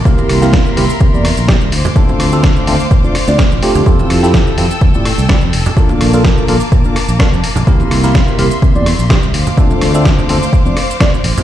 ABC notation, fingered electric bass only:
X:1
M:4/4
L:1/16
Q:"Swing 16ths" 1/4=126
K:Dm
V:1 name="Fingered electric bass" clef=bass
C,, z C,,3 z C,, z C, E,, z B,,, z C,, D,, z | z2 D,,3 z D,, z A,,, z2 D,, z A,,, z D,, | F,, z F,,3 z F,, z F,,, A,, z C,, z F,, F,,, z | z2 B,,,3 z B,,, z B,, z2 B,,, z F,, z B,,, |
C,, z C,,3 z C,, z C, E,, z B,,, z C,, D,, z | z2 D,,3 z D,, z2 F,, z4 A,,, z |]